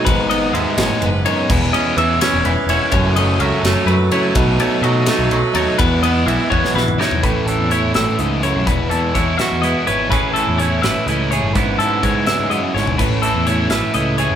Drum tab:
CC |------------|x-----------|------------|------------|
RD |x-x-x-x-x-x-|--x-x-x-x-x-|x-x-x-x-x-x-|x-x-x-x-x-x-|
HH |------------|------------|------------|------------|
SD |------o-----|------o-----|------o-----|------o-----|
T2 |------------|------------|------------|------------|
FT |------------|------------|------------|------------|
BD |o-----------|o-----------|o-----------|o-----------|

CC |------------|------------|------------|------------|
RD |x-x-x-------|------------|------------|------------|
HH |------------|x-x-x-x-x-x-|x-x-x-x-x-x-|x-x-x-x-x-x-|
SD |-------oo-o-|------o-----|------o-----|------o-----|
T2 |---------o--|------------|------------|------------|
FT |-----------o|------------|------------|------------|
BD |o-----o-----|o-----------|o---o-------|o-----------|

CC |------------|x-----------|
RD |------------|------------|
HH |x-x-x-x-x---|x-x-x-x-x-x-|
SD |------o---o-|------o-----|
T2 |------------|------------|
FT |-----------o|------------|
BD |o---o-------|o-----------|